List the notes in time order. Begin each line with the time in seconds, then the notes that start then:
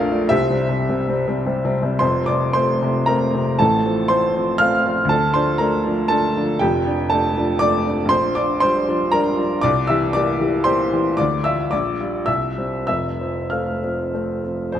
Already playing: F3 A3 D4 A#4 D5 F5
0.12 F3 A3 D4
0.29 C2 G4 C5 E5
0.50 C3 G3 C4
0.69 C3 G3 C4
0.89 C3 G3 C4
1.09 C3 G3 C4
1.27 C3 G3 C4
1.46 C3 G3 C4
1.65 C3 G3 C4
1.83 C3 G3 C4
1.99 F1 F2 C5 C6
2.26 C3 C4 D5 D6
2.53 A3 C4 C5 C6
2.82 C3 C4
3.06 A3 C4 A#4 A#5
3.35 C3 C4
3.59 A1 A2 A4 A5
3.86 F3 C4
4.08 A3 C4 C5 C6
4.35 F3 C4
4.58 A3 C4 F5 F6
4.86 F3 C4
5.05 D2
5.09 A4 A5
5.34 F3 D4 C5 C6
5.58 A3 D4 A#4 A#5
5.86 F3 D4
6.08 A3 D4 A4 A5
6.37 F3 D4
6.59 F1 F2 G4 G5
6.87 F3 D4
7.10 A3 D4 A4 A5
7.37 F3 D4
7.59 A3 D4 D5 D6
7.86 F3 D4
8.05 A#1 C6
8.11 C5
8.35 F3 D4 D5 D6
8.60 G3 D4 C5 C6
8.89 F3 D4
9.12 G3 D4 A#4 A#5
9.38 F3 D4
9.61 C2 D5 D6
9.87 E3 G4 E5 E6
10.13 A#3 G4 D5 D6
10.40 E3 G4
10.64 A#3 G4 C5 C6
10.93 E3 G4
11.17 D2 D5 D6
11.44 F3 F4 E5 E6
11.71 A#1 D5 D6
12.00 G3 F4
12.26 C2 E5 E6
12.58 G3 C4
12.87 F1 F2 E5 E6
13.21 F3 C4
13.50 A3 C4 F5 F6
13.83 F3 C4
14.14 A3 C4
14.44 F3 C4
14.72 F1 F2 C5